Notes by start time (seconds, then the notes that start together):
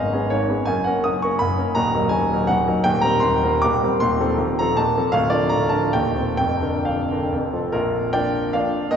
Already playing: G#1 G#2 B3 C#4 G#4 D#5 F5
0.13 B3 C#4 G#4
0.30 G#1 G#2 C#5
0.49 B3 C#4 G#4
0.65 F#1 F#2 G#5
0.84 A#3 C#4 A#4 F#5
1.04 F#1 F#2 D#6
1.22 A#3 C#4 A#4 C#6
1.39 F#1 F#2 B5
1.58 A#3 C#4 A#4
1.75 D#1 D#2 A#5
1.95 F#3 D#4 A#4
2.09 D#1 D#2 G#5
2.33 F#3 D#4 A#4
2.47 D#1 D#2 F#5
2.68 F#3 D#4 A#4
2.84 D#1 D#2 G5
3.01 G3 C4 A#4 A#5
3.20 D#1 D#2 C6
3.44 G3 C4 A#4
3.62 D#1 D#2 D6
3.84 G3 C4 A#4
4.00 D#1 D#2 C6
4.20 F3 C4 A4
4.39 D#1 D#2
4.59 F3 C4 A4 A#5
4.77 D#1 D#2 A5
4.97 F3 C4 A4
5.12 D1 D2 F5
5.30 F3 D4 A#4 D5
5.49 D1 D2 A#5
5.69 F3 D4 A#4 A5
5.93 D#1 D#2 G5
6.16 D#3 C4 A#4
6.37 F1 F2 G5
6.62 D3 D4 A#4
6.85 F1 F2 F5
7.11 D3 D4 A#4
7.32 F1 F2
7.53 F3 C4 A4
7.72 A#1 F4 A#4
8.13 F3 A#3 D4 D5 G5
8.53 F3 A#3 D4 D5 F5
8.91 D#2 A#4 D#5